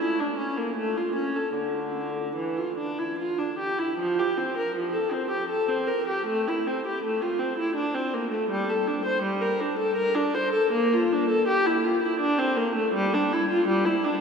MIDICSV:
0, 0, Header, 1, 2, 480
1, 0, Start_track
1, 0, Key_signature, -1, "minor"
1, 0, Tempo, 781250
1, 954, Time_signature, 3, 2, 24, 8
1, 954, Tempo, 810811
1, 2393, Key_signature, -1, "major"
1, 2394, Tempo, 763359
1, 4314, Tempo, 733496
1, 6234, Tempo, 752823
1, 7194, Tempo, 728155
1, 8993, End_track
2, 0, Start_track
2, 0, Title_t, "Viola"
2, 0, Program_c, 0, 41
2, 2, Note_on_c, 0, 64, 68
2, 112, Note_off_c, 0, 64, 0
2, 121, Note_on_c, 0, 62, 59
2, 229, Note_on_c, 0, 61, 56
2, 233, Note_off_c, 0, 62, 0
2, 344, Note_off_c, 0, 61, 0
2, 353, Note_on_c, 0, 58, 56
2, 468, Note_off_c, 0, 58, 0
2, 468, Note_on_c, 0, 57, 76
2, 584, Note_off_c, 0, 57, 0
2, 595, Note_on_c, 0, 65, 65
2, 711, Note_off_c, 0, 65, 0
2, 711, Note_on_c, 0, 61, 57
2, 829, Note_off_c, 0, 61, 0
2, 834, Note_on_c, 0, 69, 63
2, 950, Note_on_c, 0, 50, 58
2, 956, Note_off_c, 0, 69, 0
2, 1423, Note_off_c, 0, 50, 0
2, 1430, Note_on_c, 0, 52, 55
2, 1550, Note_off_c, 0, 52, 0
2, 1555, Note_on_c, 0, 65, 48
2, 1676, Note_off_c, 0, 65, 0
2, 1681, Note_on_c, 0, 62, 46
2, 1797, Note_off_c, 0, 62, 0
2, 1804, Note_on_c, 0, 64, 47
2, 1921, Note_off_c, 0, 64, 0
2, 1921, Note_on_c, 0, 65, 58
2, 2037, Note_off_c, 0, 65, 0
2, 2038, Note_on_c, 0, 62, 51
2, 2158, Note_on_c, 0, 67, 54
2, 2159, Note_off_c, 0, 62, 0
2, 2276, Note_off_c, 0, 67, 0
2, 2276, Note_on_c, 0, 64, 50
2, 2392, Note_off_c, 0, 64, 0
2, 2394, Note_on_c, 0, 53, 68
2, 2511, Note_off_c, 0, 53, 0
2, 2523, Note_on_c, 0, 67, 56
2, 2637, Note_off_c, 0, 67, 0
2, 2641, Note_on_c, 0, 60, 54
2, 2755, Note_off_c, 0, 60, 0
2, 2763, Note_on_c, 0, 70, 58
2, 2872, Note_off_c, 0, 70, 0
2, 2879, Note_on_c, 0, 53, 57
2, 2989, Note_off_c, 0, 53, 0
2, 2990, Note_on_c, 0, 69, 57
2, 3105, Note_off_c, 0, 69, 0
2, 3106, Note_on_c, 0, 60, 57
2, 3222, Note_off_c, 0, 60, 0
2, 3223, Note_on_c, 0, 67, 55
2, 3338, Note_off_c, 0, 67, 0
2, 3340, Note_on_c, 0, 69, 65
2, 3457, Note_off_c, 0, 69, 0
2, 3462, Note_on_c, 0, 60, 57
2, 3579, Note_on_c, 0, 70, 63
2, 3583, Note_off_c, 0, 60, 0
2, 3704, Note_off_c, 0, 70, 0
2, 3709, Note_on_c, 0, 67, 64
2, 3827, Note_on_c, 0, 57, 74
2, 3830, Note_off_c, 0, 67, 0
2, 3951, Note_off_c, 0, 57, 0
2, 3961, Note_on_c, 0, 64, 64
2, 4080, Note_off_c, 0, 64, 0
2, 4082, Note_on_c, 0, 60, 56
2, 4198, Note_off_c, 0, 60, 0
2, 4207, Note_on_c, 0, 67, 60
2, 4312, Note_on_c, 0, 57, 63
2, 4316, Note_off_c, 0, 67, 0
2, 4430, Note_on_c, 0, 65, 57
2, 4431, Note_off_c, 0, 57, 0
2, 4545, Note_on_c, 0, 60, 58
2, 4552, Note_off_c, 0, 65, 0
2, 4667, Note_on_c, 0, 64, 64
2, 4669, Note_off_c, 0, 60, 0
2, 4782, Note_on_c, 0, 62, 66
2, 4787, Note_off_c, 0, 64, 0
2, 4904, Note_off_c, 0, 62, 0
2, 4907, Note_on_c, 0, 60, 60
2, 5029, Note_off_c, 0, 60, 0
2, 5032, Note_on_c, 0, 58, 63
2, 5142, Note_on_c, 0, 57, 59
2, 5153, Note_off_c, 0, 58, 0
2, 5265, Note_off_c, 0, 57, 0
2, 5269, Note_on_c, 0, 55, 77
2, 5389, Note_off_c, 0, 55, 0
2, 5396, Note_on_c, 0, 69, 58
2, 5513, Note_on_c, 0, 62, 63
2, 5514, Note_off_c, 0, 69, 0
2, 5633, Note_off_c, 0, 62, 0
2, 5633, Note_on_c, 0, 72, 69
2, 5744, Note_on_c, 0, 55, 69
2, 5751, Note_off_c, 0, 72, 0
2, 5866, Note_off_c, 0, 55, 0
2, 5868, Note_on_c, 0, 70, 65
2, 5991, Note_off_c, 0, 70, 0
2, 5994, Note_on_c, 0, 62, 63
2, 6114, Note_off_c, 0, 62, 0
2, 6114, Note_on_c, 0, 69, 65
2, 6227, Note_on_c, 0, 70, 76
2, 6230, Note_off_c, 0, 69, 0
2, 6344, Note_on_c, 0, 62, 69
2, 6345, Note_off_c, 0, 70, 0
2, 6466, Note_off_c, 0, 62, 0
2, 6470, Note_on_c, 0, 72, 76
2, 6585, Note_on_c, 0, 69, 73
2, 6590, Note_off_c, 0, 72, 0
2, 6709, Note_off_c, 0, 69, 0
2, 6713, Note_on_c, 0, 58, 81
2, 6834, Note_off_c, 0, 58, 0
2, 6843, Note_on_c, 0, 65, 70
2, 6960, Note_off_c, 0, 65, 0
2, 6970, Note_on_c, 0, 62, 70
2, 7075, Note_on_c, 0, 69, 69
2, 7082, Note_off_c, 0, 62, 0
2, 7189, Note_off_c, 0, 69, 0
2, 7194, Note_on_c, 0, 67, 78
2, 7309, Note_off_c, 0, 67, 0
2, 7316, Note_on_c, 0, 64, 66
2, 7432, Note_off_c, 0, 64, 0
2, 7433, Note_on_c, 0, 65, 66
2, 7550, Note_off_c, 0, 65, 0
2, 7553, Note_on_c, 0, 64, 68
2, 7668, Note_off_c, 0, 64, 0
2, 7668, Note_on_c, 0, 62, 83
2, 7786, Note_off_c, 0, 62, 0
2, 7791, Note_on_c, 0, 60, 77
2, 7910, Note_on_c, 0, 58, 73
2, 7911, Note_off_c, 0, 60, 0
2, 8031, Note_off_c, 0, 58, 0
2, 8034, Note_on_c, 0, 57, 71
2, 8151, Note_off_c, 0, 57, 0
2, 8155, Note_on_c, 0, 55, 89
2, 8272, Note_off_c, 0, 55, 0
2, 8288, Note_on_c, 0, 62, 76
2, 8400, Note_off_c, 0, 62, 0
2, 8412, Note_on_c, 0, 64, 76
2, 8522, Note_off_c, 0, 64, 0
2, 8536, Note_on_c, 0, 65, 77
2, 8642, Note_off_c, 0, 65, 0
2, 8643, Note_on_c, 0, 55, 79
2, 8755, Note_off_c, 0, 55, 0
2, 8761, Note_on_c, 0, 64, 71
2, 8877, Note_off_c, 0, 64, 0
2, 8885, Note_on_c, 0, 62, 69
2, 8993, Note_off_c, 0, 62, 0
2, 8993, End_track
0, 0, End_of_file